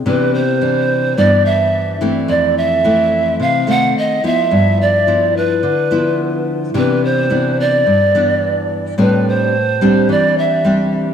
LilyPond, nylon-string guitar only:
\new Staff \with { instrumentName = "Nylon-string guitar" } { \time 4/4 \key c \major \tempo 4 = 108 << { <e b d'>8 r8 <e d'>4 <e b d'>4. <e a c'>8~ | <e a c'>4 <e a c'>4. <ees a c'>4 <f b e'>8~ | <f b e'>4 <f b e'>4 r8 <f b e'>4. | <e b d'>4 <e b d'>4 r8 <e b d'>4. |
<g c' d'>4 r8 <g c' d'>4. <g c' d'>4 | } \\ { c2 g,2 | f,2 c4 r4 | g,2 d2 | c2 g,2 |
a,2 e2 | } >> }